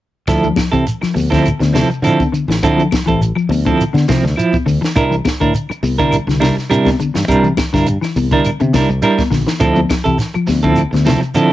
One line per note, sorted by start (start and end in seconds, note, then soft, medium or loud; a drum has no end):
0.27 0.51 D2 medium
0.27 0.47 F3 medium
0.27 0.47 E4 medium
0.27 0.47 A4 medium
0.27 muted clean electric guitar stroke medium
0.27 kick medium
0.27 snare soft
0.27 closed hi-hat medium
0.27 claves medium
0.27 shekere medium
0.43 0.69 F3 medium
0.43 closed hi-hat soft
0.43 shekere soft
0.56 muted clean electric guitar stroke soft
0.56 kick medium
0.56 snare medium
0.56 closed hi-hat soft
0.56 high conga medium
0.56 claves medium
0.56 shekere medium
0.72 0.84 C3 medium
0.72 0.98 E3 medium
0.72 0.85 C4 soft
0.72 0.86 E4 soft
0.72 0.86 A4 medium
0.72 kick medium
0.72 closed hi-hat soft
0.72 shekere soft
0.86 muted clean electric guitar stroke soft
0.86 closed hi-hat medium
0.86 shekere medium
1.01 1.27 F3 medium
1.01 muted clean electric guitar stroke soft
1.01 muted fingered electric bass stroke soft
1.01 snare soft
1.01 closed hi-hat soft
1.01 claves medium
1.01 shekere soft
1.14 1.51 D2 medium
1.14 muted clean electric guitar stroke soft
1.14 open hi-hat medium
1.14 high conga medium
1.14 shekere medium
1.30 1.57 D3 medium
1.30 1.48 F3 medium
1.30 1.48 C4 medium
1.30 1.48 E4 medium
1.30 1.48 A4 medium
1.30 kick medium
1.30 snare soft
1.30 closed hi-hat soft
1.34 shekere soft
1.45 closed hi-hat medium
1.45 claves medium
1.45 shekere medium
1.60 1.83 D2 medium
1.60 1.73 D3 medium
1.60 muted clean electric guitar stroke soft
1.60 snare soft
1.60 closed hi-hat soft
1.60 high conga medium
1.64 shekere soft
1.73 2.00 C3 medium
1.73 1.90 F3 soft
1.73 1.89 C4 medium
1.73 1.89 E4 medium
1.73 1.89 A4 medium
1.73 snare medium
1.73 closed hi-hat soft
1.73 high conga medium
1.73 shekere medium
1.90 muted clean electric guitar stroke soft
1.90 muted fingered electric bass stroke soft
1.90 closed hi-hat soft
1.90 shekere soft
2.02 2.26 D3 medium
2.02 2.22 F3 medium
2.02 2.22 C4 medium
2.02 2.22 E4 medium
2.02 2.23 A4 medium
2.02 closed hi-hat medium
2.02 claves medium
2.07 shekere medium
2.20 kick medium
2.20 closed hi-hat soft
2.20 high conga medium
2.20 shekere soft
2.32 2.46 D3 medium
2.32 muted clean electric guitar stroke soft
2.32 closed hi-hat soft
2.32 shekere medium
2.48 2.59 A1 medium
2.48 2.60 E3 medium
2.48 muted clean electric guitar stroke soft
2.48 snare medium
2.48 closed hi-hat soft
2.48 shekere soft
2.63 2.85 D3 medium
2.63 2.81 F3 medium
2.63 2.81 C4 medium
2.63 2.82 E4 medium
2.63 2.82 A4 medium
2.63 kick medium
2.63 closed hi-hat medium
2.63 claves medium
2.63 shekere medium
2.77 3.02 F3 medium
2.77 closed hi-hat soft
2.77 shekere soft
2.91 muted clean electric guitar stroke soft
2.91 kick medium
2.91 snare medium
2.91 closed hi-hat soft
2.91 high conga medium
2.91 claves medium
2.91 shekere medium
3.06 3.31 A1 medium
3.06 3.31 E3 medium
3.06 3.20 C4 soft
3.06 3.21 E4 soft
3.06 3.21 A4 medium
3.06 kick medium
3.06 shekere soft
3.21 muted clean electric guitar stroke soft
3.21 closed hi-hat medium
3.21 shekere medium
3.35 3.60 F3 medium
3.35 muted clean electric guitar stroke soft
3.35 claves medium
3.35 shekere soft
3.49 3.72 D2 medium
3.49 muted clean electric guitar stroke soft
3.49 open hi-hat medium
3.49 high conga medium
3.49 shekere medium
3.65 3.90 D3 medium
3.65 3.83 F3 medium
3.65 3.83 C4 medium
3.65 3.83 E4 medium
3.65 3.83 A4 medium
3.65 kick medium
3.65 closed hi-hat soft
3.65 shekere soft
3.78 closed hi-hat medium
3.78 claves medium
3.78 shekere medium
3.93 4.05 D3 medium
3.93 muted clean electric guitar stroke soft
3.93 snare soft
3.93 closed hi-hat soft
3.93 high conga medium
3.93 shekere soft
4.08 4.33 C3 medium
4.08 4.24 F3 medium
4.08 4.24 C4 medium
4.08 4.23 E4 medium
4.08 kick medium
4.08 snare medium
4.08 closed hi-hat soft
4.08 high conga medium
4.08 shekere medium
4.23 4.34 D2 medium
4.23 muted clean electric guitar stroke soft
4.23 snare soft
4.23 shekere soft
4.36 4.56 F3 medium
4.36 4.56 E4 medium
4.36 muted clean electric guitar stroke medium
4.36 closed hi-hat medium
4.36 claves medium
4.36 shekere medium
4.53 muted fingered electric bass stroke soft
4.53 kick medium
4.53 closed hi-hat soft
4.53 high conga medium
4.53 shekere soft
4.66 4.79 D2 medium
4.66 4.79 D3 medium
4.66 muted clean electric guitar stroke soft
4.66 open hi-hat medium
4.66 shekere medium
4.81 4.93 E3 medium
4.81 muted clean electric guitar stroke soft
4.81 snare medium
4.81 closed hi-hat soft
4.81 shekere soft
4.96 5.19 C2 medium
4.96 5.14 D4 medium
4.96 5.14 E4 medium
4.96 5.15 A#4 medium
4.96 muted clean electric guitar stroke medium
4.96 kick medium
4.96 closed hi-hat medium
4.96 claves medium
4.96 shekere medium
5.11 5.36 E3 medium
5.11 closed hi-hat soft
5.11 shekere soft
5.25 muted clean electric guitar stroke soft
5.25 kick medium
5.25 snare medium
5.25 closed hi-hat soft
5.25 high conga medium
5.25 claves medium
5.25 shekere medium
5.40 5.52 A2 medium
5.40 5.65 D3 medium
5.40 5.54 D4 soft
5.40 5.54 E4 medium
5.40 5.54 A#4 medium
5.40 kick medium
5.40 closed hi-hat soft
5.40 shekere soft
5.54 muted clean electric guitar stroke soft
5.54 closed hi-hat medium
5.54 shekere medium
5.69 muted fingered electric bass stroke soft
5.69 muted clean electric guitar stroke soft
5.69 closed hi-hat soft
5.69 claves medium
5.69 shekere soft
5.83 6.18 C2 medium
5.83 muted clean electric guitar stroke soft
5.83 open hi-hat medium
5.83 high conga medium
5.83 shekere medium
5.98 6.23 D3 medium
5.98 6.16 G3 medium
5.98 6.16 D4 medium
5.98 6.16 E4 medium
5.98 6.15 A#4 medium
5.98 kick medium
5.98 closed hi-hat soft
5.98 shekere soft
6.11 closed hi-hat medium
6.11 claves medium
6.11 shekere medium
6.27 6.50 C2 medium
6.27 6.39 D3 medium
6.27 muted clean electric guitar stroke soft
6.27 snare soft
6.27 closed hi-hat soft
6.27 shekere soft
6.40 6.66 C3 medium
6.40 6.57 G3 medium
6.40 6.56 D4 medium
6.40 6.56 E4 medium
6.40 6.56 A#4 medium
6.40 snare medium
6.40 closed hi-hat soft
6.40 high conga medium
6.44 shekere medium
6.57 muted clean electric guitar stroke soft
6.57 muted fingered electric bass stroke soft
6.57 snare soft
6.57 closed hi-hat soft
6.57 shekere soft
6.70 6.94 C3 medium
6.70 6.89 G3 medium
6.70 6.89 D4 medium
6.70 6.89 E4 medium
6.70 6.89 A#4 medium
6.70 closed hi-hat medium
6.70 claves medium
6.70 shekere medium
6.85 kick medium
6.85 snare soft
6.85 closed hi-hat soft
6.85 high conga medium
6.85 shekere soft
6.99 7.13 D3 medium
6.99 muted clean electric guitar stroke soft
6.99 closed hi-hat medium
6.99 high conga medium
6.99 shekere medium
7.14 7.26 G2 medium
7.14 7.26 E3 medium
7.14 muted clean electric guitar stroke soft
7.14 snare medium
7.14 closed hi-hat soft
7.18 shekere soft
7.28 7.51 C3 medium
7.28 7.47 G3 medium
7.28 7.47 D4 medium
7.28 7.47 E4 medium
7.28 7.47 A#4 medium
7.28 kick medium
7.28 closed hi-hat medium
7.28 claves medium
7.28 shekere medium
7.43 7.68 E3 medium
7.43 closed hi-hat soft
7.43 shekere soft
7.57 muted clean electric guitar stroke soft
7.57 kick medium
7.57 snare medium
7.57 closed hi-hat medium
7.57 high conga medium
7.57 claves medium
7.57 shekere medium
7.73 7.97 G2 medium
7.73 7.98 D3 medium
7.73 7.87 D4 soft
7.73 7.87 E4 soft
7.73 7.87 A#4 medium
7.73 kick medium
7.73 snare soft
7.73 shekere soft
7.87 muted clean electric guitar stroke soft
7.87 closed hi-hat medium
7.87 shekere medium
8.01 8.27 E3 medium
8.01 muted clean electric guitar stroke soft
8.01 snare soft
8.01 claves medium
8.01 shekere soft
8.16 8.39 C2 medium
8.16 muted clean electric guitar stroke soft
8.16 open hi-hat medium
8.16 high conga medium
8.16 shekere medium
8.31 8.56 D3 medium
8.31 8.49 G3 medium
8.31 8.49 D4 medium
8.31 8.49 E4 medium
8.31 8.49 A#4 medium
8.31 kick medium
8.31 closed hi-hat soft
8.31 shekere soft
8.45 closed hi-hat medium
8.45 claves medium
8.45 shekere medium
8.60 8.72 C3 medium
8.60 8.72 D3 medium
8.60 muted clean electric guitar stroke soft
8.60 closed hi-hat soft
8.60 high conga medium
8.60 shekere soft
8.73 8.98 C3 medium
8.73 8.90 G3 medium
8.73 8.90 D4 medium
8.73 8.89 E4 medium
8.73 8.89 A#4 medium
8.73 kick medium
8.73 snare medium
8.73 closed hi-hat soft
8.73 high conga medium
8.73 shekere medium
8.89 9.00 C2 medium
8.89 muted clean electric guitar stroke soft
8.89 shekere soft
9.02 9.21 G3 medium
9.02 9.21 D4 medium
9.02 9.22 E4 medium
9.02 9.22 A#4 medium
9.02 closed hi-hat medium
9.02 claves medium
9.02 shekere medium
9.18 muted fingered electric bass stroke soft
9.18 kick medium
9.18 snare soft
9.18 closed hi-hat soft
9.18 high conga medium
9.18 shekere soft
9.31 9.44 A#1 medium
9.31 9.45 D3 medium
9.31 muted clean electric guitar stroke soft
9.31 snare soft
9.31 open hi-hat medium
9.31 shekere medium
9.47 9.59 E3 medium
9.47 muted clean electric guitar stroke soft
9.47 snare medium
9.47 closed hi-hat soft
9.47 shekere soft
9.60 9.84 D2 medium
9.60 9.79 F3 medium
9.60 9.79 C4 medium
9.60 9.79 E4 medium
9.60 9.80 A4 medium
9.60 kick medium
9.60 closed hi-hat medium
9.60 claves medium
9.60 shekere medium
9.76 10.01 F3 medium
9.76 closed hi-hat soft
9.76 high conga medium
9.76 shekere soft
9.89 muted clean electric guitar stroke soft
9.89 kick medium
9.89 snare medium
9.89 closed hi-hat soft
9.89 high conga medium
9.89 claves medium
9.89 shekere medium
10.04 10.16 C3 medium
10.04 10.31 E3 medium
10.04 10.18 E4 soft
10.04 10.18 A4 medium
10.04 kick medium
10.04 closed hi-hat soft
10.04 shekere soft
10.18 muted clean electric guitar stroke soft
10.18 snare soft
10.18 closed hi-hat medium
10.18 shekere medium
10.33 10.60 F3 medium
10.33 muted clean electric guitar stroke soft
10.33 muted fingered electric bass stroke soft
10.33 closed hi-hat soft
10.33 claves medium
10.33 shekere soft
10.47 10.84 D2 medium
10.47 muted clean electric guitar stroke soft
10.47 snare soft
10.47 open hi-hat medium
10.47 high conga medium
10.47 shekere medium
10.62 10.89 D3 medium
10.62 10.81 F3 medium
10.62 10.81 C4 medium
10.62 10.81 E4 medium
10.62 10.81 A4 medium
10.62 kick medium
10.62 closed hi-hat soft
10.62 shekere soft
10.76 closed hi-hat medium
10.76 claves medium
10.76 shekere medium
10.91 11.16 D2 medium
10.91 11.06 D3 medium
10.91 muted clean electric guitar stroke soft
10.91 closed hi-hat soft
10.91 high conga medium
10.91 shekere soft
10.96 snare soft
11.05 11.32 C3 medium
11.05 11.22 F3 medium
11.05 11.21 C4 medium
11.05 11.21 E4 medium
11.05 11.20 A4 medium
11.05 snare medium
11.05 closed hi-hat medium
11.05 high conga medium
11.05 shekere medium
11.21 muted clean electric guitar stroke soft
11.21 closed hi-hat soft
11.21 shekere soft
11.34 11.53 D3 medium
11.34 11.53 F3 medium
11.34 11.53 C4 medium
11.34 11.53 E4 medium
11.34 11.53 A4 medium
11.34 closed hi-hat medium
11.34 claves medium
11.34 shekere medium